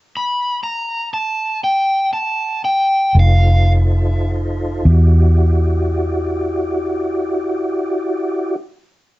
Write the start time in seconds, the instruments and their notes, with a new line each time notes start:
0.17 electric slide guitar B5
0.64 electric slide guitar A#5
1.14 electric slide guitar A5
1.64 electric slide guitar G5
2.13 electric slide guitar A5
2.65 electric slide guitar G5
3.15 fingered electric bass F1, tonewheel organ D#4 F4 A4 C5
3.20 electric slide guitar F5
4.85 fingered electric bass E2, tonewheel organ E4 F#4 G4 D5